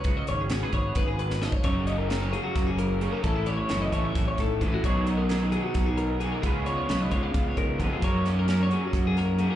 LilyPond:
<<
  \new Staff \with { instrumentName = "Clean electric guitar" } { \time 7/8 \key fis \major \tempo 4 = 132 b'16 dis''16 cis''16 gis'8 b'16 cis''8 b'16 gis'16 b'8 dis''16 cis''16 | cis''8 dis''16 ais'8 cis''16 gis'16 fis'8 gis'16 ais'8 gis'16 ais'16 | a'8 cis''16 cis''8 dis''16 cis''16 e''8 cis''16 a'8 b'16 fis'16 | cis''8 dis''16 ais'8 b'16 gis'16 fis'8 gis'16 ais'8 gis'16 ais'16 |
gis'8 cis''16 cis''8 dis''16 cis''16 eis''8 cis''16 ais'8 b'16 gis'16 | cis''8 dis''16 ais'8 cis''16 gis'16 fis'8 gis'16 ais'8 gis'16 ais'16 | }
  \new Staff \with { instrumentName = "Overdriven electric guitar" } { \time 7/8 \key fis \major r2. r8 | <fis, cis fis ais cis'>8 <fis ais cis'>8 <cis fis ais cis'>8 <fis ais cis'>4. <fis, cis fis ais cis'>8 | <a, e a cis' e'>8 <a cis' e'>8 <e a cis' e'>8 <a cis' e'>4. <a, e a cis' e'>8 | <b, dis fis b dis'>8 <fis b dis'>8 <dis fis b dis'>8 <fis b dis'>4. <b, dis fis b dis'>8 |
<cis gis b eis'>8 <gis b eis'>8 <cis gis b eis'>8 <gis b eis'>4. <cis gis b eis'>8 | <fis ais cis' fis'>8 <ais cis' fis'>8 <fis ais cis' fis'>8 <ais cis' fis'>4. <fis ais cis' fis'>8 | }
  \new Staff \with { instrumentName = "Clean electric guitar" } { \time 7/8 \key fis \major << { <cis' fis'>8 cis'8 fis'16 gis'16 b2 | dis'4 ais'4 ais4 cis'16 dis'16 | cis'16 e'8. fis'2~ fis'8 | <fis dis' fis' gis'>4 gis'4 dis'4 fis'8 |
<gis cis' eis' b'>4 b'2~ b'8 | <fis ais dis' ais'>4 ais'2~ ais'8 | } \\ { <cis fis>2 cis8 dis8 eis8 | fis,4. fis4 cis4 | a,4. a8 fis,8 gis,8 a,8 | b,4. fis4 fis4 |
cis4. gis8 cis8 dis8 eis8 | fis,4. fis4 fis,8 gis,8 | } >> }
  \new Staff \with { instrumentName = "Fingered electric bass" } { \clef bass \time 7/8 \key fis \major cis,8 gis,,4 gis,,8 gis,,4. | fis,,2 fis,,4. | a,,4 fis,,8 a,,8 a,,8 a,8 a,,8 | b,,2 b,,4. |
cis,4 b,,8 cis,8 cis,8 cis8 eis,8 | fis,2 fis,4. | }
  \new DrumStaff \with { instrumentName = "Drums" } \drummode { \time 7/8 <hh bd>8 hh8 <hh sn>8 <hh bd>8 <hh bd>8 hh16 sn16 sn16 bd16 | <hh bd>8 hh8 <hh sn>8 hh8 <hh bd sn>8 hh8 hh8 | <hh bd>8 hh8 <hh sn>8 <hh bd>8 <hh bd sn>8 <hh bd sn>8 <hh bd>8 | <hh bd>8 hh8 <hh sn>8 hh8 <hh bd sn>8 hh8 hh8 |
<hh bd>8 hh8 <hh sn>8 <hh bd>8 <hh bd>8 <hh bd>8 <hh bd>8 | <hh bd>8 <hh sn>8 <hh sn>8 hh8 <hh bd>8 <hh sn>8 hh8 | }
>>